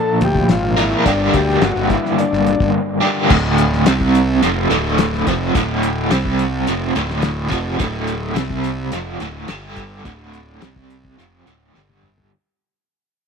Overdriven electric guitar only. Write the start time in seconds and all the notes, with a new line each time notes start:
Already playing: A#2 F3 A#3 D4 F4 A#4
0.77 A#2 F3 A#3 D4 F4 A#4
1.05 G2 D3 G3 A#3 D4 G4
3.01 G2 D3 G3 A#3 D4 G4
3.29 D2 A2 D3
3.87 C3 G3 C4
4.42 F2 C3 F3
4.70 D2 A2 D3
5.27 F2 C3 F3
5.54 D2 A2 D3
6.10 C3 G3 C4
6.68 F2 C3 F3
6.95 D2 A2 D3
7.51 F2 C3 F3
7.79 D2 A2 D3
8.36 C3 G3 C4
8.92 F2 C3 F3
9.21 D2 A2 D3
9.49 G2 D3 G3
10.05 D2 A2 D3
10.61 C3 G3 C4
11.18 F2 C3 F3
11.46 D2 A2 D3
11.74 G2 D3 G3